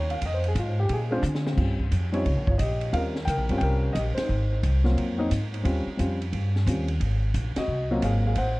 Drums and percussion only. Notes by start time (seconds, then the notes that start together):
0.10 ride
0.22 kick, ride
0.44 ride
0.56 kick, hi-hat pedal, ride
0.89 kick, ride
1.23 hi-hat pedal
1.35 snare
1.47 snare
1.58 kick, crash
1.80 kick
1.92 kick, hi-hat pedal, ride
2.14 ride
2.25 kick, ride
2.47 kick
2.59 hi-hat pedal, ride
2.81 ride
2.93 kick, ride
3.16 snare
3.27 kick, hi-hat pedal, ride
3.49 ride
3.61 kick, ride
3.95 kick, hi-hat pedal, ride
4.17 snare, ride
4.63 kick, hi-hat pedal, ride
4.85 snare
4.97 kick, ride
5.31 kick, hi-hat pedal, ride
5.54 ride
5.65 kick, ride
5.99 kick, hi-hat pedal, ride
6.22 ride
6.33 kick, ride
6.56 snare
6.67 kick, hi-hat pedal, ride
6.88 ride
7.00 kick, ride
7.34 kick, hi-hat pedal, ride
7.56 snare, ride
8.02 kick, hi-hat pedal, ride
8.35 kick, ride